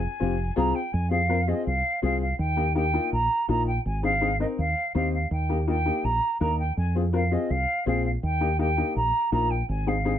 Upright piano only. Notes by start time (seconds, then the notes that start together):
0.20 C4 F4 G4
0.56 C4 F4 G#4
1.10 C4 F4 G#4
1.29 C4 F4 A#4
1.47 C4 F4 G#4
2.02 C4 F4 G#4
2.57 A#3 D#4 G4
2.75 A#3 D#4 G4
2.93 A#3 D#4 F4
3.48 A#3 D#4 F4
4.03 C4 D#4 G#4
4.21 C4 D#4 G#4
4.40 C4 D#4 A#4
4.95 C4 D#4 G4
5.49 A#3 D#4 G4
5.67 A#3 D#4 F4
5.85 A#3 D#4 G4
6.40 A#3 D#4 A#4
6.95 C4 F4 G#4
7.13 C4 F4 A#4
7.31 C4 F4 G#4
7.86 C4 F4 G#4
8.40 A#3 D#4 G4
8.59 A#3 D#4 G4
8.77 A#3 D#4 G4
9.32 A#3 D#4 F4
9.87 C4 D#4 G#4
10.05 C4 D#4 G#4